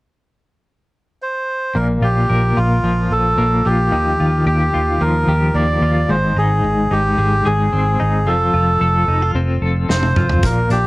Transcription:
1.22 C5
1.75 A#1 A#2 A#4
2.02 A#1 F4 G4
2.29 A#1 A#4
2.56 A#1 F4
2.83 A#1 F3
3.11 A#1 A4
3.38 A#1 A#3
3.65 A#1 F4 G4
3.92 D#2 D#3
4.20 D#2 F4
4.46 D#2 G4
4.74 D#2 F4
5.01 D#2 F3 A#4
5.27 D#2 G4
5.54 D#2 A#3 D5
5.81 D#2 F4
6.09 G#1 G#2 C5
6.37 G#1 D#4 G#4
6.64 G#1
6.91 G#1 D#4 G4
7.18 G#1 G#3
7.45 G#1 G#4
7.73 G#1 C4
8.00 G#1 D#4
8.27 F1 F3 A4
8.54 F1 F4
8.81 F1 A4
9.08 F1 D#4
9.22 F4
9.35 F1 C4
9.62 F1 A4
9.89 F1 C4 C5, snare
10.03 high tom
10.16 F1 F4, mid tom
10.29 floor tom
10.43 A#1 A#2 A#4, kick, closed hi-hat
10.70 A#1 D4 G4, closed hi-hat

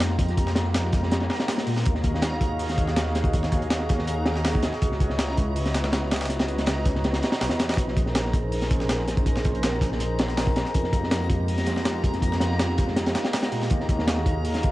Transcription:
Already playing: F2 G#3 A#3 D#4 F4 G4 A#5
0.00 snare, closed hi-hat
0.10 snare
0.19 kick, closed hi-hat
0.28 snare, closed hi-hat
0.37 kick, closed hi-hat
0.47 snare
0.55 snare, closed hi-hat
0.65 snare
0.74 snare, closed hi-hat
0.84 snare
0.92 G#3 A#3 D#4 F4 G4, kick, snare, closed hi-hat
1.02 F2, snare
1.11 snare, closed hi-hat
1.20 snare, closed hi-hat
1.30 snare, closed hi-hat
1.40 snare, closed hi-hat
1.48 snare, closed hi-hat, open hi-hat
1.58 snare, closed hi-hat
1.67 A#2, closed hi-hat, open hi-hat
1.76 snare
1.85 D#2, kick, closed hi-hat
1.95 snare
2.04 kick, closed hi-hat
2.14 snare
2.22 snare, closed hi-hat
2.32 snare
2.41 F#4 G#4 C#5 D#5 F5, kick, closed hi-hat
2.50 D#2
2.59 closed hi-hat, open hi-hat
2.69 snare, closed hi-hat
2.78 kick, closed hi-hat
2.88 snare
2.96 snare, closed hi-hat
3.07 snare
3.15 snare, closed hi-hat
3.24 kick, closed hi-hat
3.34 kick, closed hi-hat
3.43 snare
3.52 kick, closed hi-hat
3.62 closed hi-hat
3.71 snare, closed hi-hat
3.80 snare
3.89 F#4 G#4 C#5 D#5 F5, kick, snare, closed hi-hat
3.99 D#2, snare
4.07 closed hi-hat
4.26 D#2, snare, closed hi-hat
4.36 snare
4.45 snare, closed hi-hat, open hi-hat
4.55 kick
4.63 snare, closed hi-hat
4.72 snare
4.82 C#2, kick, closed hi-hat
4.92 snare
5.00 kick, closed hi-hat
5.10 snare
5.19 snare, closed hi-hat
5.28 snare
5.37 E4 F#4 B4 C#5 D#5, kick, closed hi-hat
5.47 C#2
5.56 closed hi-hat, open hi-hat
5.65 snare, closed hi-hat
5.74 snare, closed hi-hat
5.84 snare, closed hi-hat
5.93 snare, closed hi-hat
6.03 snare
6.11 snare, closed hi-hat
6.16 snare, closed hi-hat
6.21 snare, closed hi-hat
6.25 snare, closed hi-hat
6.29 snare, closed hi-hat
6.39 snare, closed hi-hat
6.48 snare, closed hi-hat
6.58 snare, closed hi-hat
6.66 snare, closed hi-hat
6.77 snare
6.85 E4 F#4 B4 C#5 D#5, kick, snare, closed hi-hat
6.95 C#2, snare
7.04 snare, closed hi-hat
7.13 snare, closed hi-hat
7.22 snare, closed hi-hat
7.32 snare, closed hi-hat
7.41 B1, snare, closed hi-hat, open hi-hat
7.49 E2, snare, closed hi-hat
7.59 snare, closed hi-hat
7.69 snare, closed hi-hat
7.74 A#1, kick, snare, closed hi-hat
7.78 A#5, closed hi-hat
7.88 snare
7.96 kick, closed hi-hat
8.06 snare
8.15 snare, closed hi-hat
8.25 snare
8.33 C#4 D#4 G#4 A#4 C5, kick, closed hi-hat
8.43 A#1
8.52 closed hi-hat, open hi-hat
8.62 snare, closed hi-hat
8.71 kick, closed hi-hat
8.80 snare
8.89 snare, closed hi-hat
8.99 snare
9.08 snare, closed hi-hat
9.17 kick, closed hi-hat
9.26 kick, closed hi-hat
9.36 snare
9.44 kick, closed hi-hat
9.55 closed hi-hat
9.63 snare, closed hi-hat
9.73 snare
9.81 C#4 D#4 G#4 A#4 C5, kick, snare, closed hi-hat
9.91 A#1, snare
10.00 closed hi-hat
10.19 A#1, snare, closed hi-hat
10.28 snare
10.37 snare, closed hi-hat, open hi-hat
10.47 kick
10.56 snare, closed hi-hat
10.65 snare
10.74 F2, kick, closed hi-hat
10.84 snare
10.93 kick, closed hi-hat
11.03 snare
11.11 snare, closed hi-hat
11.21 snare
11.30 G#3 A#3 D#4 F4 G4, kick, closed hi-hat
11.40 F2
11.48 closed hi-hat, open hi-hat
11.58 snare, closed hi-hat
11.66 snare, closed hi-hat
11.76 snare
11.85 snare, closed hi-hat
11.95 snare
12.04 kick, closed hi-hat
12.13 snare, closed hi-hat
12.22 kick, closed hi-hat
12.32 snare
12.40 snare, closed hi-hat
12.51 snare
12.59 snare, closed hi-hat
12.69 snare
12.78 G#3 A#3 D#4 F4 G4, kick, snare, closed hi-hat
12.88 F2, snare
12.96 snare, closed hi-hat
13.06 snare, closed hi-hat
13.15 snare, closed hi-hat
13.24 snare, closed hi-hat
13.33 snare, closed hi-hat, open hi-hat
13.43 snare, closed hi-hat
13.52 A#2, closed hi-hat, open hi-hat
13.62 snare
13.70 D#2, kick, closed hi-hat
13.80 snare
13.89 kick, closed hi-hat
13.99 snare
14.07 snare, closed hi-hat
14.17 snare
14.26 F#4 G#4 C#5 D#5 F5, kick, closed hi-hat
14.36 D#2
14.45 closed hi-hat, open hi-hat
14.54 snare, closed hi-hat
14.63 kick, closed hi-hat

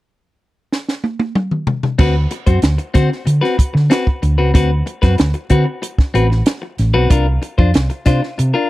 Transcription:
0.72 snare
0.88 snare
1.04 high tom
1.19 high tom
1.35 mid tom
1.51 mid tom
1.67 floor tom
1.83 floor tom
1.99 D2 C4 F#4 B4, kick, crash
2.31 muted clean electric guitar stroke, closed hi-hat
2.46 F#2 C4 F#4 C5, kick, closed hi-hat
2.62 D2, muted clean electric guitar stroke, snare, closed hi-hat
2.78 muted clean electric guitar stroke, closed hi-hat
2.94 D3 C4 F#4 C5, kick, snare, closed hi-hat
3.10 muted clean electric guitar stroke, snare
3.26 D3, muted clean electric guitar stroke, closed hi-hat
3.41 C4 F#4 B4, snare
3.57 muted clean electric guitar stroke, muted fingered electric bass stroke, kick, closed hi-hat
3.74 D3, muted clean electric guitar stroke, snare
3.90 C4 F#4 B4, snare, closed hi-hat
4.07 kick
4.22 D2, muted clean electric guitar stroke, closed hi-hat
4.38 C#2 C4 F#4 B4
4.54 D2 C4 F#4 B4, kick, closed hi-hat
4.86 muted clean electric guitar stroke, closed hi-hat
5.02 F#2 C4 F#4 B4, kick, snare, closed hi-hat
5.18 D2, muted clean electric guitar stroke, snare, closed hi-hat
5.34 muted clean electric guitar stroke, closed hi-hat
5.50 D3 C4 F#4 B4, kick, closed hi-hat
5.66 muted clean electric guitar stroke
5.82 muted clean electric guitar stroke, closed hi-hat
5.98 muted fingered electric bass stroke, kick, snare
6.14 A1 C4 F#4 B4, closed hi-hat
6.30 muted clean electric guitar stroke, snare
6.46 muted clean electric guitar stroke, snare, closed hi-hat
6.62 muted clean electric guitar stroke
6.78 A1, snare, closed hi-hat
6.94 B1 C4 F#4 B4
7.10 C2 D4 F4 A#4, kick, closed hi-hat
7.42 muted clean electric guitar stroke, closed hi-hat
7.58 F2 D4 F4 C5, kick
7.74 C2, muted clean electric guitar stroke, snare, closed hi-hat
7.90 muted clean electric guitar stroke, closed hi-hat
8.06 C3 D4 F4 C5, kick, snare, closed hi-hat
8.22 muted clean electric guitar stroke, snare
8.38 C3, muted clean electric guitar stroke, closed hi-hat
8.54 D4 F4 A#4

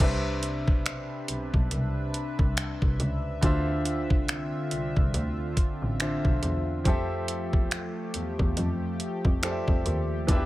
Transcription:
0.00 C2 C3 C4 D4 B4 E5, kick, closed hi-hat, crash
0.43 closed hi-hat
0.68 B1, kick
0.86 finger snap, closed hi-hat
1.28 B1, closed hi-hat
1.54 B1, kick
1.71 C2, closed hi-hat
2.14 closed hi-hat
2.39 C2, kick
2.57 finger snap, closed hi-hat
2.82 C2, kick
3.00 C#2, closed hi-hat
3.41 D2 D3 C4 D4 F4 C5, kick, closed hi-hat
3.46 E5
3.85 closed hi-hat
4.10 C2, kick
4.28 finger snap, closed hi-hat
4.71 C2, closed hi-hat
4.97 C2, kick
5.14 D2, closed hi-hat
5.57 kick, closed hi-hat
5.82 A1
6.00 D3 D4 F4 C5 E5, finger snap, closed hi-hat
6.25 B1, kick
6.43 E2, closed hi-hat
6.84 F2 F3 A3 C4 G4 A4, kick, closed hi-hat
6.89 E5
7.28 closed hi-hat
7.53 E2, kick
7.71 finger snap, closed hi-hat
8.14 E2, closed hi-hat
8.39 E2, kick
8.57 F2, closed hi-hat
9.00 closed hi-hat
9.25 F2, kick
9.42 F3 C4 G4 A4 D5, finger snap, closed hi-hat
9.51 E5
9.68 F2, kick
9.86 D#2, closed hi-hat
10.27 E2 E3 B3 D4 F4 B4, kick, closed hi-hat
10.32 E5
10.36 G4

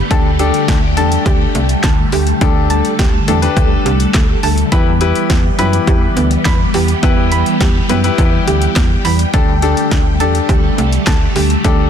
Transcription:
Already playing: D3 A3
0.10 D2 G3 D4 G4 A4 A5, kick, closed hi-hat
0.39 D4 G4 A4, closed hi-hat
0.54 closed hi-hat
0.68 D2 A3, kick, snare, closed hi-hat
0.97 E2 D4 G4 A4 A5, closed hi-hat
1.12 closed hi-hat
1.26 D2 G4, kick, closed hi-hat
1.55 C2 A3, closed hi-hat
1.69 closed hi-hat
1.84 D2 A5, kick, snare, clap, closed hi-hat
2.12 D2 G4, open hi-hat
2.27 closed hi-hat
2.41 D2 A3 D4 G4 A4, kick, closed hi-hat
2.70 A5, closed hi-hat
2.85 closed hi-hat
2.99 D2 G4, kick, snare, closed hi-hat
3.28 E2 A3 D4 G4 A4, closed hi-hat
3.42 D4 G4 B4, closed hi-hat
3.57 D2, kick, closed hi-hat
3.85 C2 G4, closed hi-hat
4.00 closed hi-hat
4.14 D2 A3, kick, snare, clap, closed hi-hat
4.43 D2 A5, open hi-hat
4.58 closed hi-hat
4.72 E2 E3 B3 E4 G4 B4 B5, kick, closed hi-hat
5.01 E4 G4 B4, closed hi-hat
5.15 closed hi-hat
5.30 E2 B3, kick, snare, closed hi-hat
5.58 F#2 E4 G4 B4 B5, closed hi-hat
5.73 closed hi-hat
5.87 E2 G4, kick, closed hi-hat
6.16 D2 B3, closed hi-hat
6.31 closed hi-hat
6.45 E2 B5, kick, snare, clap, closed hi-hat
6.74 E2 G4, open hi-hat
6.88 closed hi-hat
7.03 E2 B3 E4 G4 B4, kick, closed hi-hat
7.32 B5, closed hi-hat
7.46 closed hi-hat
7.61 E2 G4, kick, snare, closed hi-hat
7.89 F#2 B3 E4 G4 B4, closed hi-hat
8.04 E4 G4 B4, closed hi-hat
8.18 E2, kick, closed hi-hat
8.47 D2 G4, closed hi-hat
8.62 closed hi-hat
8.76 E2 B3, kick, snare, clap, closed hi-hat
9.05 E2 B5, open hi-hat
9.19 closed hi-hat
9.33 D2 D3 A3 D4 G4 A4 A5, kick, closed hi-hat
9.62 D4 G4 A4, closed hi-hat
9.77 closed hi-hat
9.91 D2 A3, kick, snare, closed hi-hat
10.20 E2 D4 G4 A4 A5, closed hi-hat
10.35 closed hi-hat
10.49 D2 G4, kick, closed hi-hat
10.78 C2 A3, closed hi-hat
10.92 closed hi-hat
11.07 D2 A5, kick, snare, clap, closed hi-hat
11.36 D2 G4, open hi-hat
11.50 closed hi-hat
11.64 D2 A3 D4 G4 A4 F#5, kick, closed hi-hat

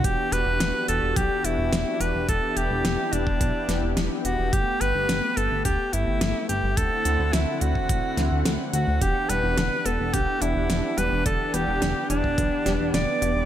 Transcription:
0.04 E1 E3 B3 D4 F#4 G4, kick, closed hi-hat
0.32 E1 B4, closed hi-hat
0.46 E1
0.60 E1, snare, closed hi-hat
0.88 E1 A4, closed hi-hat
1.02 E1
1.16 B1 G4, kick, closed hi-hat
1.44 E1 E4, closed hi-hat
1.58 E1
1.72 E1, snare, closed hi-hat
2.00 E1 B4, closed hi-hat
2.14 E1
2.29 E1 E4 A4, kick, closed hi-hat
2.56 E1 G4, closed hi-hat
2.71 E1
2.85 E1, snare, closed hi-hat
3.13 E1 D4, closed hi-hat
3.27 E1, kick
3.41 B1, kick, closed hi-hat
3.69 E1, snare, closed hi-hat
3.83 E1
3.97 E1, snare, closed hi-hat
4.25 E1 F#4, closed hi-hat
4.39 E1
4.53 G1 A3 G4, kick, closed hi-hat
4.81 G1 B4, closed hi-hat
4.95 G1
5.09 G1, snare, closed hi-hat
5.37 G1 A4, closed hi-hat
5.51 G1
5.65 D2 G4, kick, closed hi-hat
5.93 G1 E4, closed hi-hat
6.07 G1
6.21 G1, snare, closed hi-hat
6.49 G1 G4, closed hi-hat
6.63 G1
6.77 D2 D3 C4 E4 A4 F#5, kick, closed hi-hat
7.05 D2, closed hi-hat
7.19 D2
7.33 D2 E4, snare, closed hi-hat
7.61 D2 F#4, closed hi-hat
7.75 D2, kick
7.89 A1, kick, closed hi-hat
8.17 D2, snare, closed hi-hat
8.31 D2
8.45 D2, snare, closed hi-hat
8.73 D2 F#4, closed hi-hat
8.87 D2
9.01 E1 D3 E3 B3 D4 G4, kick, closed hi-hat
9.29 E1 G3 B4, closed hi-hat
9.43 E1
9.57 E1 D3, snare, closed hi-hat
9.86 E1 B3 A4, closed hi-hat
10.00 E1
10.13 B1 D3 G4, kick, closed hi-hat
10.42 E1 D4 E4, closed hi-hat
10.56 E1
10.70 E1 D3, snare, closed hi-hat
10.98 E1 G3 B4, closed hi-hat
11.12 E1
11.26 E1 D3 A4, kick, closed hi-hat
11.54 E1 B3 G4, closed hi-hat
11.68 E1
11.82 E1 D3, snare, closed hi-hat
12.10 E1 D4, closed hi-hat
12.24 E1, kick
12.38 B1 D3, kick, closed hi-hat
12.66 E1 G3, snare, closed hi-hat
12.80 E1
12.94 E1 D3 D5, snare, closed hi-hat
13.22 E1 B3, closed hi-hat
13.36 E1

